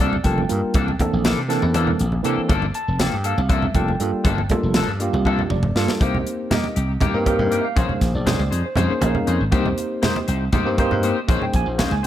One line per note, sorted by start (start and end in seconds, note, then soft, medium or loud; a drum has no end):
0.00 0.17 C2 loud
0.00 0.15 F3 medium
0.00 0.15 A#3 medium
0.00 0.15 D4 medium
0.00 0.15 A4 medium
0.00 0.25 D5 medium
0.00 high conga medium
0.13 low conga medium
0.24 0.44 F1 medium
0.24 0.43 G3 medium
0.24 0.43 A#3 medium
0.24 0.40 A#3 soft
0.24 0.43 D4 medium
0.24 0.40 D4 soft
0.24 0.43 F4 medium
0.24 0.40 A4 soft
0.24 0.44 A4 medium
0.24 0.95 G5 medium
0.24 kick medium
0.24 closed hi-hat medium
0.38 high conga medium
0.48 0.60 G2 medium
0.48 0.74 G3 medium
0.48 0.74 A#3 medium
0.48 0.74 D4 medium
0.48 0.75 F4 medium
0.48 0.75 A#4 medium
0.48 closed hi-hat medium
0.64 muted slap bass stroke soft
0.74 0.94 C2 medium
0.74 0.90 E3 medium
0.74 0.90 A#3 medium
0.74 0.90 D4 medium
0.74 0.90 A4 medium
0.74 kick loud
0.74 closed hi-hat medium
0.74 muted conga medium
0.88 high conga medium
0.99 1.36 E3 medium
0.99 1.36 A#3 medium
0.99 1.36 C4 medium
0.99 1.37 D4 medium
0.99 1.37 A4 loud
0.99 kick medium
0.99 closed hi-hat medium
0.99 low conga medium
1.13 1.32 A#1 medium
1.24 1.40 E3 medium
1.24 1.40 A#3 medium
1.24 1.40 D4 medium
1.24 1.40 A4 medium
1.24 snare loud
1.24 closed hi-hat medium
1.24 high conga medium
1.38 1.57 C3 medium
1.49 2.04 E3 loud
1.49 2.04 A#3 medium
1.49 1.65 A#3 soft
1.49 2.04 C4 medium
1.49 2.05 D4 medium
1.49 1.65 D4 soft
1.49 1.65 A4 medium
1.49 2.05 A4 loud
1.49 snare soft
1.49 closed hi-hat medium
1.62 1.92 E2 medium
1.62 muted conga medium
1.74 1.90 E3 medium
1.74 1.90 A#3 medium
1.74 1.90 D4 medium
1.74 1.90 A4 medium
1.74 closed hi-hat medium
1.74 high conga loud
1.87 low conga medium
1.99 2.20 A#1 medium
1.99 closed hi-hat medium
1.99 low conga soft
2.12 high conga medium
2.23 2.35 C3 medium
2.23 2.49 E3 loud
2.23 2.40 E3 medium
2.23 2.49 A#3 medium
2.23 2.40 A#3 medium
2.23 2.50 C4 medium
2.23 2.50 D4 medium
2.23 2.40 D4 medium
2.23 2.50 A4 loud
2.23 2.40 A4 medium
2.23 closed hi-hat medium
2.38 muted slap bass stroke soft
2.49 2.69 G1 medium
2.49 2.64 F3 loud
2.49 2.65 A#3 loud
2.49 2.65 D4 medium
2.49 2.65 A4 loud
2.49 kick loud
2.49 closed hi-hat medium
2.49 muted conga medium
2.62 high conga medium
2.74 2.99 A5 loud
2.74 closed hi-hat medium
2.88 3.08 F1 medium
2.99 3.15 F3 medium
2.99 3.15 A#3 medium
2.99 3.15 D4 medium
2.99 3.15 A4 medium
2.99 3.25 G5 medium
2.99 snare loud
2.99 closed hi-hat medium
2.99 high conga loud
3.13 3.33 G2 medium
3.24 3.41 A#3 soft
3.24 3.40 D4 soft
3.24 3.40 A4 soft
3.24 3.50 F5 medium
3.24 closed hi-hat medium
3.38 3.67 C2 loud
3.38 muted conga medium
3.49 3.65 F3 medium
3.49 3.65 A#3 medium
3.49 3.65 D4 medium
3.49 3.65 A4 medium
3.49 3.75 E5 medium
3.49 kick medium
3.49 closed hi-hat medium
3.49 high conga loud
3.62 low conga medium
3.74 3.95 F1 loud
3.74 3.93 G3 medium
3.74 3.93 A#3 medium
3.74 3.91 A#3 soft
3.74 3.94 D4 medium
3.74 3.90 D4 medium
3.74 3.94 F4 medium
3.74 3.90 A4 soft
3.74 3.94 A4 medium
3.74 4.47 G5 medium
3.74 kick medium
3.74 closed hi-hat medium
3.74 low conga soft
3.88 high conga medium
3.99 4.10 G2 medium
3.99 4.25 G3 medium
3.99 4.25 A#3 medium
3.99 4.26 D4 medium
3.99 4.26 F4 medium
3.99 4.26 A4 medium
3.99 closed hi-hat medium
4.13 muted slap bass stroke soft
4.24 4.45 G1 loud
4.24 4.40 F3 medium
4.24 4.40 A#3 medium
4.24 4.41 D4 medium
4.24 4.40 A4 medium
4.24 kick loud
4.24 closed hi-hat medium
4.24 muted conga medium
4.24 low conga soft
4.38 high conga medium
4.38 low conga soft
4.49 4.87 G3 medium
4.49 4.87 A#3 medium
4.49 4.88 D4 medium
4.49 4.87 F4 medium
4.49 4.88 A4 loud
4.49 kick medium
4.49 closed hi-hat medium
4.49 low conga medium
4.63 4.83 F1 medium
4.74 4.90 F3 medium
4.74 4.91 A#3 medium
4.74 4.91 D4 medium
4.74 4.91 A4 medium
4.74 snare loud
4.74 closed hi-hat medium
4.74 high conga medium
4.74 low conga soft
4.88 5.08 G2 medium
5.00 5.55 G3 medium
5.00 5.55 A#3 medium
5.00 5.56 D4 medium
5.00 5.56 F4 medium
5.00 5.56 G4 medium
5.00 5.48 F5 medium
5.00 closed hi-hat medium
5.13 5.43 C2 medium
5.13 muted conga medium
5.25 5.41 F3 medium
5.25 5.41 A#3 medium
5.25 5.41 D4 medium
5.25 5.41 A4 medium
5.25 kick medium
5.25 high conga loud
5.39 low conga medium
5.50 5.71 F1 medium
5.50 5.98 D5 medium
5.50 mid tom medium
5.50 low conga soft
5.63 mid tom medium
5.63 high conga medium
5.63 low conga soft
5.75 5.85 G2 medium
5.75 5.91 F3 medium
5.75 6.01 G3 medium
5.75 6.00 A#3 medium
5.75 5.91 A#3 medium
5.75 6.01 D4 medium
5.75 5.92 D4 medium
5.75 6.02 F4 medium
5.75 5.92 A4 medium
5.75 6.02 A4 medium
5.75 snare medium
5.88 muted slap bass stroke soft
5.88 snare medium
6.00 6.21 C2 medium
6.00 6.16 A#3 medium
6.00 6.74 A#3 medium
6.00 6.75 C4 medium
6.00 6.16 D#4 medium
6.00 6.75 D#4 medium
6.00 6.16 G4 medium
6.00 6.75 G4 medium
6.00 6.48 C5 medium
6.00 kick medium
6.00 closed hi-hat medium
6.00 muted conga medium
6.15 high conga medium
6.15 low conga medium
6.27 closed hi-hat medium
6.27 low conga soft
6.51 6.66 A#3 medium
6.51 6.67 D#4 medium
6.51 6.67 G4 medium
6.51 6.77 D#5 medium
6.51 snare loud
6.51 closed hi-hat medium
6.51 high conga medium
6.51 low conga medium
6.64 muted conga medium
6.76 6.96 C2 medium
6.76 6.92 D#4 soft
6.76 6.91 G4 soft
6.76 closed hi-hat medium
6.76 low conga soft
6.89 low conga soft
7.00 7.11 D#2 medium
7.00 7.16 A#3 medium
7.00 7.17 D#4 medium
7.00 7.17 G4 loud
7.00 kick medium
7.00 closed hi-hat medium
7.00 high conga loud
7.00 low conga medium
7.14 7.34 G2 medium
7.14 7.23 A#3 medium
7.14 7.23 C4 medium
7.14 7.23 D#4 medium
7.14 7.24 G4 medium
7.14 7.24 A#4 loud
7.14 low conga soft
7.26 7.63 A#3 medium
7.26 7.63 C4 medium
7.26 7.42 D#4 soft
7.26 7.64 D#4 medium
7.26 7.42 G4 medium
7.26 7.64 G4 medium
7.26 7.64 A#4 loud
7.26 kick medium
7.26 closed hi-hat medium
7.26 muted conga medium
7.26 low conga soft
7.39 7.59 G2 medium
7.39 high conga medium
7.39 low conga medium
7.51 7.67 A#3 medium
7.51 7.67 D#4 medium
7.51 7.67 G4 medium
7.51 closed hi-hat medium
7.61 7.64 E5 medium
7.65 8.11 F5 medium
7.76 7.87 A#1 medium
7.76 8.50 C#3 medium
7.76 8.50 A#3 medium
7.76 7.92 C#4 medium
7.76 7.92 D#4 medium
7.76 8.50 D#4 medium
7.76 7.92 G#4 medium
7.76 8.51 G#4 medium
7.76 7.92 C5 medium
7.76 8.51 C5 medium
7.76 kick loud
7.76 closed hi-hat medium
7.76 muted conga medium
7.89 high conga medium
7.89 low conga medium
8.01 8.11 A#1 medium
8.01 kick medium
8.01 snare soft
8.01 closed hi-hat medium
8.14 8.34 A#1 medium
8.14 8.62 D5 medium
8.26 8.42 C#4 medium
8.26 8.42 D#4 medium
8.26 8.42 G#4 medium
8.26 8.42 C5 medium
8.26 snare loud
8.26 closed hi-hat medium
8.26 high conga medium
8.26 low conga medium
8.39 8.49 C#2 medium
8.39 muted conga medium
8.51 8.62 F2 medium
8.51 8.68 D#4 soft
8.51 8.67 G#4 soft
8.51 8.67 C5 soft
8.51 closed hi-hat medium
8.51 low conga soft
8.64 8.90 C5 medium
8.64 low conga soft
8.76 8.87 F2 medium
8.76 8.92 C#4 medium
8.76 8.92 D#4 medium
8.76 8.92 G#4 medium
8.76 8.92 C5 medium
8.76 closed hi-hat medium
8.76 high conga loud
8.76 low conga loud
8.88 8.99 A#3 medium
8.88 8.99 C#4 medium
8.88 8.99 D#4 medium
8.88 9.00 G#4 medium
8.88 9.00 C5 medium
8.88 muted slap bass stroke soft
8.88 low conga soft
9.01 9.12 A#1 medium
9.01 9.39 A#3 medium
9.01 9.39 C#4 medium
9.01 9.39 D#4 medium
9.01 9.18 D#4 soft
9.01 9.17 G#4 soft
9.01 9.39 G#4 medium
9.01 9.40 A#4 medium
9.01 9.17 C5 medium
9.01 closed hi-hat medium
9.01 muted conga loud
9.01 low conga soft
9.15 9.31 F5 medium
9.15 high conga medium
9.15 low conga medium
9.27 9.38 F2 medium
9.27 9.42 C#4 medium
9.27 9.43 D#4 medium
9.27 9.43 G#4 medium
9.27 9.43 C5 medium
9.27 closed hi-hat medium
9.40 9.50 G#1 medium
9.51 9.72 C2 medium
9.51 10.25 A#3 medium
9.51 9.67 A#3 loud
9.51 10.26 C4 medium
9.51 9.68 D#4 medium
9.51 10.26 D#4 medium
9.51 9.68 G4 medium
9.51 10.26 G4 medium
9.51 9.68 C5 medium
9.51 10.27 C5 medium
9.51 kick loud
9.51 closed hi-hat medium
9.51 muted conga medium
9.66 high conga medium
9.66 low conga medium
9.78 closed hi-hat medium
9.78 low conga soft
10.02 10.18 A#3 medium
10.02 10.18 D#4 medium
10.02 10.18 G4 medium
10.02 10.18 C5 medium
10.02 snare loud
10.02 closed hi-hat medium
10.02 high conga medium
10.02 low conga medium
10.16 muted conga medium
10.28 10.48 C2 medium
10.28 10.44 D#4 soft
10.28 10.44 G4 soft
10.28 10.43 C5 medium
10.28 closed hi-hat medium
10.28 low conga soft
10.41 low conga soft
10.52 10.63 D#2 medium
10.52 10.68 A#3 medium
10.52 10.68 D#4 loud
10.52 10.68 G4 medium
10.52 10.68 C5 medium
10.52 kick loud
10.52 closed hi-hat medium
10.52 high conga medium
10.52 low conga medium
10.65 10.86 G2 medium
10.65 10.75 A#3 medium
10.65 10.75 C4 medium
10.65 10.75 D#4 medium
10.65 10.75 G4 medium
10.65 10.76 C5 medium
10.65 low conga soft
10.78 11.15 A#3 loud
10.78 11.15 C4 medium
10.78 11.15 D#4 loud
10.78 10.94 D#4 soft
10.78 10.94 G4 medium
10.78 11.16 G4 medium
10.78 10.94 C5 medium
10.78 11.16 C5 loud
10.78 kick medium
10.78 closed hi-hat medium
10.78 muted conga medium
10.78 low conga soft
10.91 11.11 G2 medium
10.91 high conga medium
10.91 low conga medium
11.03 11.19 A#3 medium
11.03 11.19 D#4 medium
11.03 11.19 G4 medium
11.03 11.19 C5 medium
11.03 closed hi-hat medium
11.28 11.38 A#1 loud
11.28 12.02 A#3 medium
11.28 11.44 C#4 medium
11.28 12.02 C#4 medium
11.28 12.02 D#4 medium
11.28 11.44 D#4 medium
11.28 11.44 G#4 medium
11.28 12.02 G#4 medium
11.28 11.44 C5 medium
11.28 11.67 C5 medium
11.28 kick loud
11.28 closed hi-hat medium
11.28 muted conga medium
11.28 low conga soft
11.42 11.54 G5 medium
11.42 high conga medium
11.42 low conga medium
11.53 11.64 A#1 medium
11.53 11.67 G#5 loud
11.53 kick medium
11.53 closed hi-hat medium
11.53 low conga soft
11.66 11.86 A#1 medium
11.66 11.79 C5 medium
11.78 11.94 C#4 medium
11.78 11.94 D#4 medium
11.78 11.94 G#4 medium
11.78 11.95 C5 medium
11.78 11.91 F5 medium
11.78 snare loud
11.78 closed hi-hat medium
11.78 high conga medium
11.78 low conga medium
11.91 12.01 C#2 medium
11.91 12.04 G#5 medium
11.91 muted conga medium
12.03 12.07 C5 soft